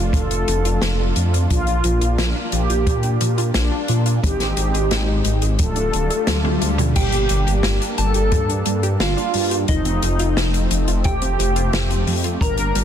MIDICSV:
0, 0, Header, 1, 8, 480
1, 0, Start_track
1, 0, Tempo, 681818
1, 1058, Time_signature, 4, 2, 24, 8
1, 9040, End_track
2, 0, Start_track
2, 0, Title_t, "Synth bell"
2, 0, Program_c, 0, 98
2, 4899, Note_on_c, 0, 79, 93
2, 5522, Note_off_c, 0, 79, 0
2, 5618, Note_on_c, 0, 81, 96
2, 6242, Note_off_c, 0, 81, 0
2, 6338, Note_on_c, 0, 77, 88
2, 6743, Note_off_c, 0, 77, 0
2, 6818, Note_on_c, 0, 75, 91
2, 7682, Note_off_c, 0, 75, 0
2, 7778, Note_on_c, 0, 79, 92
2, 8642, Note_off_c, 0, 79, 0
2, 8737, Note_on_c, 0, 82, 95
2, 9040, Note_off_c, 0, 82, 0
2, 9040, End_track
3, 0, Start_track
3, 0, Title_t, "Analog polysynth"
3, 0, Program_c, 1, 90
3, 98, Note_on_c, 1, 69, 98
3, 962, Note_off_c, 1, 69, 0
3, 1058, Note_on_c, 1, 65, 110
3, 1682, Note_off_c, 1, 65, 0
3, 1778, Note_on_c, 1, 67, 103
3, 2402, Note_off_c, 1, 67, 0
3, 2499, Note_on_c, 1, 62, 97
3, 2903, Note_off_c, 1, 62, 0
3, 2978, Note_on_c, 1, 67, 105
3, 3842, Note_off_c, 1, 67, 0
3, 3938, Note_on_c, 1, 69, 107
3, 4802, Note_off_c, 1, 69, 0
3, 4898, Note_on_c, 1, 67, 110
3, 5522, Note_off_c, 1, 67, 0
3, 5618, Note_on_c, 1, 69, 103
3, 6242, Note_off_c, 1, 69, 0
3, 6339, Note_on_c, 1, 65, 94
3, 6743, Note_off_c, 1, 65, 0
3, 6818, Note_on_c, 1, 63, 112
3, 7682, Note_off_c, 1, 63, 0
3, 7778, Note_on_c, 1, 67, 105
3, 8642, Note_off_c, 1, 67, 0
3, 8738, Note_on_c, 1, 70, 110
3, 9040, Note_off_c, 1, 70, 0
3, 9040, End_track
4, 0, Start_track
4, 0, Title_t, "Synth arpeggio sound"
4, 0, Program_c, 2, 84
4, 0, Note_on_c, 2, 65, 79
4, 75, Note_off_c, 2, 65, 0
4, 98, Note_on_c, 2, 53, 82
4, 195, Note_off_c, 2, 53, 0
4, 218, Note_on_c, 2, 60, 72
4, 315, Note_off_c, 2, 60, 0
4, 338, Note_on_c, 2, 53, 102
4, 452, Note_off_c, 2, 53, 0
4, 458, Note_on_c, 2, 65, 106
4, 555, Note_off_c, 2, 65, 0
4, 579, Note_on_c, 2, 53, 100
4, 675, Note_off_c, 2, 53, 0
4, 699, Note_on_c, 2, 60, 79
4, 796, Note_off_c, 2, 60, 0
4, 818, Note_on_c, 2, 53, 76
4, 876, Note_off_c, 2, 53, 0
4, 938, Note_on_c, 2, 65, 76
4, 1035, Note_off_c, 2, 65, 0
4, 1058, Note_on_c, 2, 53, 84
4, 1155, Note_off_c, 2, 53, 0
4, 1178, Note_on_c, 2, 62, 75
4, 1275, Note_off_c, 2, 62, 0
4, 1299, Note_on_c, 2, 53, 92
4, 1412, Note_off_c, 2, 53, 0
4, 1418, Note_on_c, 2, 65, 100
4, 1515, Note_off_c, 2, 65, 0
4, 1537, Note_on_c, 2, 53, 105
4, 1635, Note_off_c, 2, 53, 0
4, 1657, Note_on_c, 2, 62, 71
4, 1755, Note_off_c, 2, 62, 0
4, 1778, Note_on_c, 2, 53, 76
4, 1836, Note_off_c, 2, 53, 0
4, 1898, Note_on_c, 2, 65, 78
4, 1995, Note_off_c, 2, 65, 0
4, 2018, Note_on_c, 2, 53, 82
4, 2115, Note_off_c, 2, 53, 0
4, 2139, Note_on_c, 2, 62, 77
4, 2235, Note_off_c, 2, 62, 0
4, 2258, Note_on_c, 2, 53, 107
4, 2372, Note_off_c, 2, 53, 0
4, 2378, Note_on_c, 2, 65, 109
4, 2475, Note_off_c, 2, 65, 0
4, 2498, Note_on_c, 2, 53, 99
4, 2595, Note_off_c, 2, 53, 0
4, 2619, Note_on_c, 2, 62, 80
4, 2715, Note_off_c, 2, 62, 0
4, 2738, Note_on_c, 2, 53, 79
4, 2796, Note_off_c, 2, 53, 0
4, 2858, Note_on_c, 2, 65, 79
4, 2955, Note_off_c, 2, 65, 0
4, 2978, Note_on_c, 2, 56, 85
4, 3075, Note_off_c, 2, 56, 0
4, 3099, Note_on_c, 2, 63, 74
4, 3195, Note_off_c, 2, 63, 0
4, 3218, Note_on_c, 2, 56, 96
4, 3332, Note_off_c, 2, 56, 0
4, 3338, Note_on_c, 2, 68, 97
4, 3435, Note_off_c, 2, 68, 0
4, 3458, Note_on_c, 2, 56, 102
4, 3555, Note_off_c, 2, 56, 0
4, 3578, Note_on_c, 2, 63, 71
4, 3675, Note_off_c, 2, 63, 0
4, 3698, Note_on_c, 2, 56, 77
4, 3756, Note_off_c, 2, 56, 0
4, 3818, Note_on_c, 2, 68, 78
4, 3915, Note_off_c, 2, 68, 0
4, 3938, Note_on_c, 2, 53, 82
4, 4035, Note_off_c, 2, 53, 0
4, 4058, Note_on_c, 2, 62, 74
4, 4155, Note_off_c, 2, 62, 0
4, 4178, Note_on_c, 2, 62, 76
4, 4236, Note_off_c, 2, 62, 0
4, 4297, Note_on_c, 2, 69, 105
4, 4395, Note_off_c, 2, 69, 0
4, 4417, Note_on_c, 2, 65, 82
4, 4532, Note_off_c, 2, 65, 0
4, 4537, Note_on_c, 2, 62, 80
4, 4596, Note_off_c, 2, 62, 0
4, 4658, Note_on_c, 2, 65, 76
4, 4755, Note_off_c, 2, 65, 0
4, 4777, Note_on_c, 2, 53, 79
4, 4875, Note_off_c, 2, 53, 0
4, 4897, Note_on_c, 2, 55, 88
4, 4995, Note_off_c, 2, 55, 0
4, 5017, Note_on_c, 2, 62, 78
4, 5115, Note_off_c, 2, 62, 0
4, 5137, Note_on_c, 2, 55, 103
4, 5251, Note_off_c, 2, 55, 0
4, 5258, Note_on_c, 2, 67, 101
4, 5355, Note_off_c, 2, 67, 0
4, 5378, Note_on_c, 2, 55, 98
4, 5475, Note_off_c, 2, 55, 0
4, 5498, Note_on_c, 2, 62, 75
4, 5595, Note_off_c, 2, 62, 0
4, 5618, Note_on_c, 2, 55, 77
4, 5676, Note_off_c, 2, 55, 0
4, 5738, Note_on_c, 2, 67, 79
4, 5835, Note_off_c, 2, 67, 0
4, 5858, Note_on_c, 2, 55, 83
4, 5955, Note_off_c, 2, 55, 0
4, 5978, Note_on_c, 2, 62, 75
4, 6075, Note_off_c, 2, 62, 0
4, 6098, Note_on_c, 2, 55, 104
4, 6212, Note_off_c, 2, 55, 0
4, 6218, Note_on_c, 2, 67, 107
4, 6315, Note_off_c, 2, 67, 0
4, 6338, Note_on_c, 2, 55, 100
4, 6435, Note_off_c, 2, 55, 0
4, 6457, Note_on_c, 2, 62, 81
4, 6555, Note_off_c, 2, 62, 0
4, 6577, Note_on_c, 2, 55, 78
4, 6636, Note_off_c, 2, 55, 0
4, 6697, Note_on_c, 2, 67, 83
4, 6795, Note_off_c, 2, 67, 0
4, 6819, Note_on_c, 2, 53, 84
4, 6915, Note_off_c, 2, 53, 0
4, 6938, Note_on_c, 2, 60, 79
4, 7035, Note_off_c, 2, 60, 0
4, 7059, Note_on_c, 2, 53, 98
4, 7173, Note_off_c, 2, 53, 0
4, 7179, Note_on_c, 2, 65, 102
4, 7275, Note_off_c, 2, 65, 0
4, 7299, Note_on_c, 2, 53, 98
4, 7396, Note_off_c, 2, 53, 0
4, 7418, Note_on_c, 2, 60, 72
4, 7515, Note_off_c, 2, 60, 0
4, 7539, Note_on_c, 2, 53, 77
4, 7597, Note_off_c, 2, 53, 0
4, 7659, Note_on_c, 2, 65, 75
4, 7755, Note_off_c, 2, 65, 0
4, 7779, Note_on_c, 2, 53, 85
4, 7875, Note_off_c, 2, 53, 0
4, 7899, Note_on_c, 2, 60, 76
4, 7996, Note_off_c, 2, 60, 0
4, 8019, Note_on_c, 2, 53, 104
4, 8132, Note_off_c, 2, 53, 0
4, 8139, Note_on_c, 2, 65, 108
4, 8235, Note_off_c, 2, 65, 0
4, 8259, Note_on_c, 2, 53, 97
4, 8356, Note_off_c, 2, 53, 0
4, 8379, Note_on_c, 2, 60, 83
4, 8476, Note_off_c, 2, 60, 0
4, 8499, Note_on_c, 2, 53, 79
4, 8556, Note_off_c, 2, 53, 0
4, 8619, Note_on_c, 2, 65, 76
4, 8715, Note_off_c, 2, 65, 0
4, 8739, Note_on_c, 2, 55, 85
4, 8835, Note_off_c, 2, 55, 0
4, 8859, Note_on_c, 2, 62, 78
4, 8956, Note_off_c, 2, 62, 0
4, 8979, Note_on_c, 2, 55, 99
4, 9040, Note_off_c, 2, 55, 0
4, 9040, End_track
5, 0, Start_track
5, 0, Title_t, "Analog synth pad"
5, 0, Program_c, 3, 89
5, 0, Note_on_c, 3, 57, 79
5, 0, Note_on_c, 3, 62, 71
5, 0, Note_on_c, 3, 65, 87
5, 1030, Note_off_c, 3, 57, 0
5, 1058, Note_on_c, 3, 58, 77
5, 2950, Note_off_c, 3, 62, 0
5, 2950, Note_off_c, 3, 65, 0
5, 2959, Note_off_c, 3, 58, 0
5, 2978, Note_on_c, 3, 56, 78
5, 2978, Note_on_c, 3, 60, 70
5, 2978, Note_on_c, 3, 63, 86
5, 3928, Note_off_c, 3, 56, 0
5, 3928, Note_off_c, 3, 60, 0
5, 3928, Note_off_c, 3, 63, 0
5, 3939, Note_on_c, 3, 57, 79
5, 3939, Note_on_c, 3, 62, 68
5, 3939, Note_on_c, 3, 65, 86
5, 4889, Note_off_c, 3, 57, 0
5, 4889, Note_off_c, 3, 62, 0
5, 4889, Note_off_c, 3, 65, 0
5, 4898, Note_on_c, 3, 55, 78
5, 4899, Note_on_c, 3, 58, 76
5, 4899, Note_on_c, 3, 62, 92
5, 6799, Note_off_c, 3, 55, 0
5, 6799, Note_off_c, 3, 58, 0
5, 6799, Note_off_c, 3, 62, 0
5, 6819, Note_on_c, 3, 53, 83
5, 6819, Note_on_c, 3, 57, 75
5, 6819, Note_on_c, 3, 60, 89
5, 8719, Note_off_c, 3, 53, 0
5, 8719, Note_off_c, 3, 57, 0
5, 8719, Note_off_c, 3, 60, 0
5, 8737, Note_on_c, 3, 58, 74
5, 8737, Note_on_c, 3, 62, 90
5, 8738, Note_on_c, 3, 55, 80
5, 9040, Note_off_c, 3, 55, 0
5, 9040, Note_off_c, 3, 58, 0
5, 9040, Note_off_c, 3, 62, 0
5, 9040, End_track
6, 0, Start_track
6, 0, Title_t, "Detuned saw bass"
6, 0, Program_c, 4, 39
6, 0, Note_on_c, 4, 29, 95
6, 85, Note_off_c, 4, 29, 0
6, 92, Note_on_c, 4, 29, 98
6, 309, Note_off_c, 4, 29, 0
6, 337, Note_on_c, 4, 29, 101
6, 552, Note_off_c, 4, 29, 0
6, 577, Note_on_c, 4, 29, 100
6, 792, Note_off_c, 4, 29, 0
6, 817, Note_on_c, 4, 41, 83
6, 1032, Note_off_c, 4, 41, 0
6, 1060, Note_on_c, 4, 34, 92
6, 1273, Note_off_c, 4, 34, 0
6, 1297, Note_on_c, 4, 34, 103
6, 1405, Note_off_c, 4, 34, 0
6, 1418, Note_on_c, 4, 34, 91
6, 1525, Note_off_c, 4, 34, 0
6, 1538, Note_on_c, 4, 34, 98
6, 1645, Note_off_c, 4, 34, 0
6, 1777, Note_on_c, 4, 34, 92
6, 1885, Note_off_c, 4, 34, 0
6, 1897, Note_on_c, 4, 34, 80
6, 2005, Note_off_c, 4, 34, 0
6, 2017, Note_on_c, 4, 46, 97
6, 2232, Note_off_c, 4, 46, 0
6, 2257, Note_on_c, 4, 46, 86
6, 2472, Note_off_c, 4, 46, 0
6, 2497, Note_on_c, 4, 34, 84
6, 2605, Note_off_c, 4, 34, 0
6, 2737, Note_on_c, 4, 46, 94
6, 2952, Note_off_c, 4, 46, 0
6, 2981, Note_on_c, 4, 32, 91
6, 3194, Note_off_c, 4, 32, 0
6, 3217, Note_on_c, 4, 32, 98
6, 3325, Note_off_c, 4, 32, 0
6, 3337, Note_on_c, 4, 32, 81
6, 3445, Note_off_c, 4, 32, 0
6, 3458, Note_on_c, 4, 32, 88
6, 3672, Note_off_c, 4, 32, 0
6, 3698, Note_on_c, 4, 32, 85
6, 3805, Note_off_c, 4, 32, 0
6, 3818, Note_on_c, 4, 32, 91
6, 3925, Note_off_c, 4, 32, 0
6, 3938, Note_on_c, 4, 26, 80
6, 4152, Note_off_c, 4, 26, 0
6, 4178, Note_on_c, 4, 26, 96
6, 4285, Note_off_c, 4, 26, 0
6, 4418, Note_on_c, 4, 38, 89
6, 4633, Note_off_c, 4, 38, 0
6, 4658, Note_on_c, 4, 38, 83
6, 4873, Note_off_c, 4, 38, 0
6, 4900, Note_on_c, 4, 31, 99
6, 5114, Note_off_c, 4, 31, 0
6, 5138, Note_on_c, 4, 31, 101
6, 5245, Note_off_c, 4, 31, 0
6, 5258, Note_on_c, 4, 31, 93
6, 5365, Note_off_c, 4, 31, 0
6, 5378, Note_on_c, 4, 31, 100
6, 5485, Note_off_c, 4, 31, 0
6, 5618, Note_on_c, 4, 31, 91
6, 5725, Note_off_c, 4, 31, 0
6, 5739, Note_on_c, 4, 31, 85
6, 5845, Note_off_c, 4, 31, 0
6, 5857, Note_on_c, 4, 43, 96
6, 6072, Note_off_c, 4, 43, 0
6, 6098, Note_on_c, 4, 43, 87
6, 6312, Note_off_c, 4, 43, 0
6, 6338, Note_on_c, 4, 31, 86
6, 6445, Note_off_c, 4, 31, 0
6, 6578, Note_on_c, 4, 43, 98
6, 6792, Note_off_c, 4, 43, 0
6, 6819, Note_on_c, 4, 29, 90
6, 7033, Note_off_c, 4, 29, 0
6, 7058, Note_on_c, 4, 29, 96
6, 7165, Note_off_c, 4, 29, 0
6, 7178, Note_on_c, 4, 29, 79
6, 7285, Note_off_c, 4, 29, 0
6, 7298, Note_on_c, 4, 29, 86
6, 7512, Note_off_c, 4, 29, 0
6, 7538, Note_on_c, 4, 29, 90
6, 7645, Note_off_c, 4, 29, 0
6, 7658, Note_on_c, 4, 29, 95
6, 7765, Note_off_c, 4, 29, 0
6, 7780, Note_on_c, 4, 29, 97
6, 7993, Note_off_c, 4, 29, 0
6, 8018, Note_on_c, 4, 29, 99
6, 8232, Note_off_c, 4, 29, 0
6, 8258, Note_on_c, 4, 29, 99
6, 8472, Note_off_c, 4, 29, 0
6, 8498, Note_on_c, 4, 41, 84
6, 8712, Note_off_c, 4, 41, 0
6, 8736, Note_on_c, 4, 31, 100
6, 8952, Note_off_c, 4, 31, 0
6, 8977, Note_on_c, 4, 31, 104
6, 9040, Note_off_c, 4, 31, 0
6, 9040, End_track
7, 0, Start_track
7, 0, Title_t, "Swell"
7, 0, Program_c, 5, 103
7, 3938, Note_on_c, 5, 60, 73
7, 4898, Note_off_c, 5, 60, 0
7, 9040, End_track
8, 0, Start_track
8, 0, Title_t, "Drums"
8, 92, Note_on_c, 9, 36, 115
8, 96, Note_on_c, 9, 42, 84
8, 162, Note_off_c, 9, 36, 0
8, 166, Note_off_c, 9, 42, 0
8, 217, Note_on_c, 9, 42, 57
8, 287, Note_off_c, 9, 42, 0
8, 337, Note_on_c, 9, 42, 86
8, 407, Note_off_c, 9, 42, 0
8, 459, Note_on_c, 9, 42, 61
8, 529, Note_off_c, 9, 42, 0
8, 574, Note_on_c, 9, 38, 112
8, 578, Note_on_c, 9, 42, 85
8, 644, Note_off_c, 9, 38, 0
8, 649, Note_off_c, 9, 42, 0
8, 816, Note_on_c, 9, 42, 82
8, 886, Note_off_c, 9, 42, 0
8, 943, Note_on_c, 9, 42, 67
8, 1014, Note_off_c, 9, 42, 0
8, 1059, Note_on_c, 9, 42, 82
8, 1060, Note_on_c, 9, 36, 105
8, 1129, Note_off_c, 9, 42, 0
8, 1130, Note_off_c, 9, 36, 0
8, 1174, Note_on_c, 9, 42, 51
8, 1245, Note_off_c, 9, 42, 0
8, 1294, Note_on_c, 9, 42, 91
8, 1364, Note_off_c, 9, 42, 0
8, 1418, Note_on_c, 9, 42, 64
8, 1488, Note_off_c, 9, 42, 0
8, 1538, Note_on_c, 9, 38, 121
8, 1538, Note_on_c, 9, 42, 92
8, 1608, Note_off_c, 9, 38, 0
8, 1609, Note_off_c, 9, 42, 0
8, 1775, Note_on_c, 9, 42, 86
8, 1845, Note_off_c, 9, 42, 0
8, 1899, Note_on_c, 9, 42, 66
8, 1970, Note_off_c, 9, 42, 0
8, 2017, Note_on_c, 9, 36, 117
8, 2018, Note_on_c, 9, 42, 87
8, 2088, Note_off_c, 9, 36, 0
8, 2089, Note_off_c, 9, 42, 0
8, 2133, Note_on_c, 9, 42, 54
8, 2203, Note_off_c, 9, 42, 0
8, 2257, Note_on_c, 9, 42, 92
8, 2328, Note_off_c, 9, 42, 0
8, 2380, Note_on_c, 9, 42, 70
8, 2450, Note_off_c, 9, 42, 0
8, 2494, Note_on_c, 9, 38, 100
8, 2495, Note_on_c, 9, 42, 86
8, 2565, Note_off_c, 9, 38, 0
8, 2565, Note_off_c, 9, 42, 0
8, 2733, Note_on_c, 9, 42, 84
8, 2803, Note_off_c, 9, 42, 0
8, 2857, Note_on_c, 9, 42, 66
8, 2927, Note_off_c, 9, 42, 0
8, 2982, Note_on_c, 9, 36, 106
8, 2983, Note_on_c, 9, 42, 89
8, 3052, Note_off_c, 9, 36, 0
8, 3054, Note_off_c, 9, 42, 0
8, 3097, Note_on_c, 9, 38, 36
8, 3099, Note_on_c, 9, 42, 50
8, 3167, Note_off_c, 9, 38, 0
8, 3169, Note_off_c, 9, 42, 0
8, 3216, Note_on_c, 9, 42, 94
8, 3287, Note_off_c, 9, 42, 0
8, 3341, Note_on_c, 9, 42, 58
8, 3412, Note_off_c, 9, 42, 0
8, 3456, Note_on_c, 9, 42, 88
8, 3459, Note_on_c, 9, 38, 99
8, 3527, Note_off_c, 9, 42, 0
8, 3530, Note_off_c, 9, 38, 0
8, 3693, Note_on_c, 9, 42, 85
8, 3763, Note_off_c, 9, 42, 0
8, 3814, Note_on_c, 9, 42, 65
8, 3885, Note_off_c, 9, 42, 0
8, 3933, Note_on_c, 9, 42, 95
8, 3938, Note_on_c, 9, 36, 120
8, 4004, Note_off_c, 9, 42, 0
8, 4009, Note_off_c, 9, 36, 0
8, 4053, Note_on_c, 9, 42, 55
8, 4124, Note_off_c, 9, 42, 0
8, 4177, Note_on_c, 9, 42, 84
8, 4248, Note_off_c, 9, 42, 0
8, 4297, Note_on_c, 9, 42, 66
8, 4368, Note_off_c, 9, 42, 0
8, 4414, Note_on_c, 9, 38, 121
8, 4414, Note_on_c, 9, 42, 93
8, 4422, Note_on_c, 9, 48, 56
8, 4485, Note_off_c, 9, 38, 0
8, 4485, Note_off_c, 9, 42, 0
8, 4493, Note_off_c, 9, 48, 0
8, 4537, Note_on_c, 9, 48, 56
8, 4608, Note_off_c, 9, 48, 0
8, 4657, Note_on_c, 9, 42, 81
8, 4728, Note_off_c, 9, 42, 0
8, 4775, Note_on_c, 9, 45, 77
8, 4780, Note_on_c, 9, 42, 66
8, 4846, Note_off_c, 9, 45, 0
8, 4851, Note_off_c, 9, 42, 0
8, 4898, Note_on_c, 9, 42, 84
8, 4899, Note_on_c, 9, 49, 112
8, 4900, Note_on_c, 9, 36, 105
8, 4968, Note_off_c, 9, 42, 0
8, 4970, Note_off_c, 9, 49, 0
8, 4971, Note_off_c, 9, 36, 0
8, 5014, Note_on_c, 9, 42, 62
8, 5084, Note_off_c, 9, 42, 0
8, 5133, Note_on_c, 9, 42, 100
8, 5203, Note_off_c, 9, 42, 0
8, 5263, Note_on_c, 9, 42, 57
8, 5333, Note_off_c, 9, 42, 0
8, 5373, Note_on_c, 9, 38, 114
8, 5379, Note_on_c, 9, 42, 78
8, 5443, Note_off_c, 9, 38, 0
8, 5449, Note_off_c, 9, 42, 0
8, 5502, Note_on_c, 9, 42, 58
8, 5573, Note_off_c, 9, 42, 0
8, 5616, Note_on_c, 9, 42, 91
8, 5687, Note_off_c, 9, 42, 0
8, 5732, Note_on_c, 9, 42, 57
8, 5802, Note_off_c, 9, 42, 0
8, 5855, Note_on_c, 9, 42, 77
8, 5857, Note_on_c, 9, 36, 124
8, 5926, Note_off_c, 9, 42, 0
8, 5927, Note_off_c, 9, 36, 0
8, 5981, Note_on_c, 9, 42, 55
8, 6051, Note_off_c, 9, 42, 0
8, 6094, Note_on_c, 9, 42, 99
8, 6164, Note_off_c, 9, 42, 0
8, 6217, Note_on_c, 9, 42, 55
8, 6288, Note_off_c, 9, 42, 0
8, 6337, Note_on_c, 9, 38, 118
8, 6337, Note_on_c, 9, 42, 76
8, 6407, Note_off_c, 9, 42, 0
8, 6408, Note_off_c, 9, 38, 0
8, 6461, Note_on_c, 9, 42, 50
8, 6531, Note_off_c, 9, 42, 0
8, 6573, Note_on_c, 9, 46, 95
8, 6644, Note_off_c, 9, 46, 0
8, 6696, Note_on_c, 9, 42, 59
8, 6766, Note_off_c, 9, 42, 0
8, 6815, Note_on_c, 9, 42, 82
8, 6819, Note_on_c, 9, 36, 111
8, 6885, Note_off_c, 9, 42, 0
8, 6890, Note_off_c, 9, 36, 0
8, 6936, Note_on_c, 9, 42, 58
8, 7006, Note_off_c, 9, 42, 0
8, 7057, Note_on_c, 9, 42, 106
8, 7128, Note_off_c, 9, 42, 0
8, 7176, Note_on_c, 9, 42, 58
8, 7246, Note_off_c, 9, 42, 0
8, 7300, Note_on_c, 9, 38, 111
8, 7303, Note_on_c, 9, 42, 78
8, 7370, Note_off_c, 9, 38, 0
8, 7373, Note_off_c, 9, 42, 0
8, 7420, Note_on_c, 9, 42, 59
8, 7490, Note_off_c, 9, 42, 0
8, 7538, Note_on_c, 9, 42, 105
8, 7609, Note_off_c, 9, 42, 0
8, 7657, Note_on_c, 9, 42, 59
8, 7727, Note_off_c, 9, 42, 0
8, 7774, Note_on_c, 9, 42, 74
8, 7780, Note_on_c, 9, 36, 127
8, 7844, Note_off_c, 9, 42, 0
8, 7850, Note_off_c, 9, 36, 0
8, 7897, Note_on_c, 9, 42, 62
8, 7967, Note_off_c, 9, 42, 0
8, 8024, Note_on_c, 9, 42, 99
8, 8094, Note_off_c, 9, 42, 0
8, 8138, Note_on_c, 9, 42, 62
8, 8209, Note_off_c, 9, 42, 0
8, 8260, Note_on_c, 9, 42, 75
8, 8262, Note_on_c, 9, 38, 121
8, 8330, Note_off_c, 9, 42, 0
8, 8332, Note_off_c, 9, 38, 0
8, 8381, Note_on_c, 9, 42, 60
8, 8451, Note_off_c, 9, 42, 0
8, 8500, Note_on_c, 9, 46, 90
8, 8570, Note_off_c, 9, 46, 0
8, 8617, Note_on_c, 9, 42, 64
8, 8688, Note_off_c, 9, 42, 0
8, 8736, Note_on_c, 9, 36, 126
8, 8744, Note_on_c, 9, 42, 88
8, 8807, Note_off_c, 9, 36, 0
8, 8815, Note_off_c, 9, 42, 0
8, 8853, Note_on_c, 9, 42, 61
8, 8923, Note_off_c, 9, 42, 0
8, 8978, Note_on_c, 9, 42, 101
8, 9040, Note_off_c, 9, 42, 0
8, 9040, End_track
0, 0, End_of_file